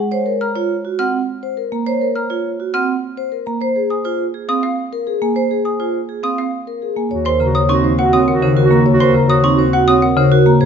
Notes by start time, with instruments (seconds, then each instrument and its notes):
Already playing: marimba G#3, vibraphone F#5
0.11 vibraphone C5 C#5
0.26 vibraphone A#4
0.41 vibraphone A#5, xylophone F6
0.56 vibraphone F4 C#5
0.85 vibraphone F#4
0.99 vibraphone C4 F#5, xylophone F6
1.43 vibraphone C5
1.57 vibraphone A#4
1.72 marimba A#3, vibraphone A#5
1.86 vibraphone C5 C#5
2.01 vibraphone A#4
2.16 vibraphone A#5, xylophone F6
2.30 vibraphone F4 C#5
2.60 vibraphone F#4
2.74 vibraphone C4 F#5, xylophone F6
3.17 vibraphone C5
3.32 vibraphone A#4
3.46 marimba A#3, vibraphone A#5
3.61 vibraphone C5
3.76 vibraphone G#4
3.90 vibraphone G#5, xylophone D#6
4.05 vibraphone F4 C5
4.34 vibraphone G#4
4.49 vibraphone C4 F5, xylophone D#6
4.63 xylophone F5
4.93 vibraphone A#4
5.07 vibraphone G#4
5.22 marimba A#3, vibraphone G#5
5.36 vibraphone C5
5.51 vibraphone G#4
5.65 vibraphone G#5, xylophone D#6
5.80 vibraphone F4 C5
6.09 vibraphone G#4
6.23 vibraphone C4 F5, xylophone D#6
6.38 xylophone F5
6.67 vibraphone A#4
6.82 vibraphone G#4
6.96 marimba A#3, vibraphone G#5
7.11 double bass section D#2, clarinet F#4, vibraphone C#5
7.25 vibraphone A#4 C5, xylophone C6
7.40 marimba C#3, clarinet F#4, vibraphone A#5
7.55 vibraphone C#5, xylophone D#6
7.69 marimba C4, vibraphone D#4, clarinet F#4, xylophone C#6
7.84 vibraphone C5
7.98 vibraphone F#4 F#5, clarinet F#4, xylophone F#5
8.13 vibraphone C4 C#5, xylophone D#6
8.28 vibraphone A#4, xylophone F#5
8.32 clarinet F#4
8.42 marimba C#3, vibraphone D#4 C5
8.57 vibraphone F#4 A#4
8.63 clarinet F#4
8.71 marimba A#3, vibraphone A#5
8.86 vibraphone C#5
8.93 clarinet F#4
9.00 vibraphone A#4 C5, xylophone C6
9.15 marimba C#3, vibraphone A#5
9.24 clarinet F#4
9.30 vibraphone C#5, xylophone D#6
9.44 marimba C4, vibraphone D#4, xylophone C#6
9.55 clarinet F#4
9.59 vibraphone C5
9.73 vibraphone F#4 F#5, xylophone F#5
9.85 vibraphone C4 C#5, clarinet F#4, xylophone D#6
10.02 vibraphone A#4, xylophone F#5
10.16 marimba C#3, vibraphone D#4 C5, clarinet F#4
10.32 vibraphone F#4 A#4
10.46 marimba A#3, vibraphone A#5
10.60 double bass section G#2, clarinet F#4, vibraphone G#4 C5